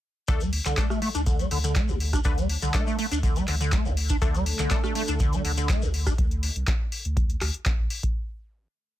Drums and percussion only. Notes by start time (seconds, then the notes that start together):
0.28 kick, closed hi-hat, shekere
0.40 closed hi-hat, shekere
0.53 open hi-hat
0.65 clap, closed hi-hat, shekere
0.77 kick, clap, closed hi-hat, shekere
0.90 cross-stick, shekere
1.02 open hi-hat
1.15 closed hi-hat, shekere
1.26 kick, closed hi-hat, shekere
1.39 closed hi-hat, shekere
1.51 open hi-hat
1.64 closed hi-hat, shekere
1.75 kick, clap, closed hi-hat, shekere
1.88 shekere
2.00 open hi-hat
2.13 kick, cross-stick, closed hi-hat, shekere
2.24 kick, closed hi-hat, shekere
2.38 closed hi-hat, shekere
2.49 open hi-hat
2.62 closed hi-hat, shekere
2.74 kick, clap, closed hi-hat, shekere
2.87 shekere
2.99 open hi-hat
3.12 closed hi-hat, shekere
3.23 kick, closed hi-hat, shekere
3.36 closed hi-hat, shekere
3.48 clap, open hi-hat
3.61 closed hi-hat, shekere
3.72 kick, clap, closed hi-hat, shekere
3.86 shekere
3.97 open hi-hat
4.09 kick, closed hi-hat, shekere
4.22 kick, closed hi-hat, shekere
4.34 closed hi-hat, shekere
4.46 open hi-hat
4.59 clap, closed hi-hat, shekere
4.70 kick, clap, closed hi-hat, shekere
4.84 cross-stick, shekere
4.95 open hi-hat
5.08 closed hi-hat, shekere
5.20 kick, closed hi-hat, shekere
5.33 closed hi-hat, shekere
5.45 open hi-hat
5.57 closed hi-hat, shekere
5.69 kick, clap, closed hi-hat, shekere
5.82 shekere
5.94 open hi-hat
6.07 kick, cross-stick, closed hi-hat, shekere
6.18 kick, closed hi-hat
6.31 closed hi-hat
6.43 open hi-hat
6.56 closed hi-hat
6.67 kick, clap, closed hi-hat
6.92 open hi-hat
7.05 closed hi-hat
7.17 kick, closed hi-hat
7.30 closed hi-hat
7.41 cross-stick, clap, open hi-hat
7.54 closed hi-hat
7.66 kick, clap, closed hi-hat
7.90 open hi-hat
8.03 kick, closed hi-hat